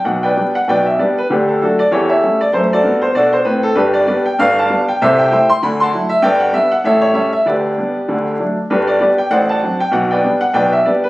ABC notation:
X:1
M:4/4
L:1/8
Q:"Swing" 1/4=195
K:G
V:1 name="Upright piano"
f [Bdg]2 f [Bdg] e [GBd] B | [DG] A [DFA] d [GA^c] [Ace]2 d | c [FAd]2 c [FAd] c B A | [DGB] d [GBd] g [Bd=f] [dfa]2 g |
[Ace] g [ceg] c' b [fac']2 e | [Bdg] f e f [A^ce] c [Ace] e | [GBd]6 z2 | [DGB] d [GBd] g [cdf] [dfa]2 g |
f [Bdg]2 f [Bdg] e [GBd] B |]
V:2 name="Upright piano" clef=bass
[B,,,B,,]2 [G,B,D]2 [B,,,B,,]2 [G,B,D]2 | [D,,D,]2 [F,A,]2 [E,,E,]2 [G,A,^C]2 | [F,,A,]2 [G,,B,]2 [B,,D]2 [A,,C]2 | [G,,,G,,]2 [G,B,D]2 [G,,,G,,]2 [G,B,D]2 |
[C,,C,]2 [G,A,E]2 [D,,D,]2 [F,A,E]2 | [G,,,G,,]2 [G,B,D]2 [A,,,A,,]2 [G,A,^C]2 | [D,,D,]2 [G,B,D]2 [D,,D,]2 [F,A,D]2 | [G,,,G,,]2 [G,B,D]2 [A,,,A,,]2 [F,CD]2 |
[B,,,B,,]2 [G,B,D]2 [B,,,B,,]2 [G,B,D]2 |]